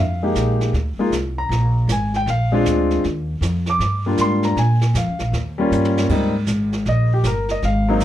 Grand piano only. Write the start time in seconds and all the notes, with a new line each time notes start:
0.00 F5
0.23 G#3 A#3 D#4 G4
0.99 G#3 A#3 D#4 F4
1.38 A#5
1.92 G#5
2.16 G5
2.30 F5
2.52 G#3 C4 D4 F4
2.69 D5
3.70 D6
4.06 G3 A#3 D4 F4
4.21 C6
4.45 A#5
4.59 G#5
4.97 F5
5.58 G3 A#3 C#4 F4
6.10 G3 A#3 C4 D#4
6.89 D#5
7.14 G4
7.27 A#4
7.51 D#5
7.65 F5
7.89 F#3 A#3 C4 D#4